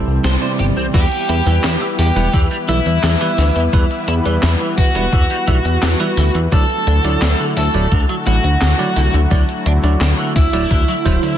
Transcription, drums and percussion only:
0.24 snare loud
0.24 closed hi-hat medium
0.59 closed hi-hat medium
0.94 kick loud
0.94 closed hi-hat medium
0.94 crash loud
0.94 tambourine soft
1.12 closed hi-hat soft
1.12 tambourine soft
1.29 closed hi-hat loud
1.46 closed hi-hat medium
1.46 tambourine medium
1.64 snare loud
1.64 clap loud
1.64 closed hi-hat medium
1.64 tambourine soft
1.81 closed hi-hat soft
1.81 tambourine soft
1.99 open hi-hat medium
2.16 closed hi-hat medium
2.16 tambourine medium
2.34 kick loud
2.34 closed hi-hat medium
2.34 tambourine soft
2.51 closed hi-hat soft
2.51 tambourine soft
2.69 closed hi-hat loud
2.86 closed hi-hat medium
2.86 tambourine medium
3.03 snare loud
3.03 clap loud
3.03 closed hi-hat medium
3.03 tambourine soft
3.21 closed hi-hat soft
3.21 tambourine soft
3.38 open hi-hat medium
3.56 closed hi-hat medium
3.56 tambourine medium
3.73 kick loud
3.73 closed hi-hat medium
3.73 tambourine soft
3.91 closed hi-hat soft
3.91 tambourine soft
4.08 closed hi-hat loud
4.25 closed hi-hat medium
4.25 tambourine medium
4.43 snare loud
4.43 clap medium
4.43 closed hi-hat medium
4.43 tambourine soft
4.60 closed hi-hat soft
4.60 tambourine soft
4.78 kick loud
4.78 open hi-hat medium
4.95 closed hi-hat medium
4.95 tambourine medium
5.13 kick loud
5.13 closed hi-hat medium
5.13 tambourine soft
5.30 closed hi-hat soft
5.30 tambourine soft
5.48 kick medium
5.48 closed hi-hat loud
5.65 closed hi-hat medium
5.65 tambourine medium
5.83 snare loud
5.83 clap loud
5.83 closed hi-hat medium
5.83 tambourine soft
6.00 closed hi-hat soft
6.00 tambourine soft
6.17 open hi-hat medium
6.35 closed hi-hat medium
6.35 tambourine medium
6.52 kick loud
6.52 closed hi-hat medium
6.52 tambourine soft
6.70 closed hi-hat soft
6.70 tambourine soft
6.87 closed hi-hat loud
7.05 closed hi-hat medium
7.05 tambourine medium
7.22 snare loud
7.22 clap medium
7.22 closed hi-hat medium
7.22 tambourine soft
7.39 closed hi-hat soft
7.39 tambourine soft
7.57 open hi-hat medium
7.74 closed hi-hat medium
7.74 tambourine medium
7.92 kick loud
7.92 closed hi-hat medium
7.92 tambourine soft
8.09 closed hi-hat soft
8.09 tambourine soft
8.27 closed hi-hat medium
8.44 closed hi-hat medium
8.44 tambourine medium
8.61 snare loud
8.61 clap medium
8.61 closed hi-hat medium
8.61 tambourine soft
8.79 closed hi-hat soft
8.79 tambourine soft
8.96 open hi-hat medium
9.14 closed hi-hat medium
9.14 tambourine medium
9.31 kick loud
9.31 closed hi-hat medium
9.31 tambourine medium
9.49 closed hi-hat soft
9.49 tambourine soft
9.66 closed hi-hat medium
9.84 closed hi-hat medium
9.84 tambourine medium
10.01 snare loud
10.01 clap medium
10.01 closed hi-hat medium
10.01 tambourine medium
10.19 closed hi-hat soft
10.19 tambourine soft
10.36 kick loud
10.36 open hi-hat medium
10.53 closed hi-hat medium
10.53 tambourine medium
10.71 kick loud
10.71 closed hi-hat medium
10.71 tambourine medium
10.88 closed hi-hat soft
10.88 tambourine soft
11.06 kick medium
11.06 closed hi-hat medium
11.23 closed hi-hat medium
11.23 tambourine medium

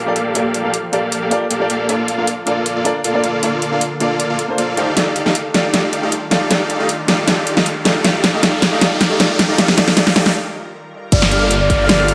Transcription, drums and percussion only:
0.16 closed hi-hat medium
0.35 closed hi-hat medium
0.54 closed hi-hat medium
0.74 closed hi-hat medium
0.93 closed hi-hat medium
1.12 closed hi-hat medium
1.31 closed hi-hat medium
1.51 closed hi-hat medium
1.70 closed hi-hat medium
1.89 closed hi-hat medium
2.08 closed hi-hat medium
2.27 closed hi-hat medium
2.47 closed hi-hat medium
2.66 closed hi-hat medium
2.85 closed hi-hat medium
3.04 closed hi-hat medium
3.24 closed hi-hat medium
3.43 closed hi-hat medium
3.62 closed hi-hat medium
3.81 closed hi-hat medium
4.00 closed hi-hat medium
4.20 closed hi-hat medium
4.39 closed hi-hat medium
4.58 closed hi-hat medium
4.77 closed hi-hat medium
4.97 snare soft
4.97 closed hi-hat medium
5.16 closed hi-hat medium
5.26 snare soft
5.35 closed hi-hat medium
5.54 snare medium
5.54 closed hi-hat medium
5.74 snare medium
5.74 closed hi-hat medium
5.93 closed hi-hat medium
6.12 closed hi-hat medium
6.31 snare medium
6.31 closed hi-hat medium
6.51 snare medium
6.51 closed hi-hat medium
6.70 closed hi-hat medium
6.89 closed hi-hat medium
7.08 snare medium
7.08 closed hi-hat medium
7.28 snare medium
7.28 closed hi-hat medium
7.47 closed hi-hat medium
7.57 snare medium
7.66 closed hi-hat medium
7.85 snare medium
7.85 closed hi-hat medium
8.04 snare medium
8.04 closed hi-hat medium
8.24 snare medium
8.24 closed hi-hat medium
8.43 snare medium
8.43 closed hi-hat medium
8.62 snare medium
8.62 closed hi-hat medium
8.81 snare medium
8.81 closed hi-hat medium
9.01 snare medium
9.01 closed hi-hat medium
9.20 snare medium
9.20 closed hi-hat medium
9.39 snare medium
9.39 closed hi-hat medium
9.58 snare medium
9.58 closed hi-hat medium
9.68 snare medium
9.78 snare medium
9.78 closed hi-hat medium
9.88 snare medium
9.97 snare loud
9.97 closed hi-hat medium
10.07 snare medium
10.16 snare loud
10.16 closed hi-hat medium
10.26 snare medium
11.12 kick loud
11.12 closed hi-hat medium
11.12 crash loud
11.22 snare medium
11.31 closed hi-hat medium
11.51 closed hi-hat medium
11.70 kick loud
11.70 closed hi-hat medium
11.89 snare loud
11.89 closed hi-hat medium
12.08 closed hi-hat medium

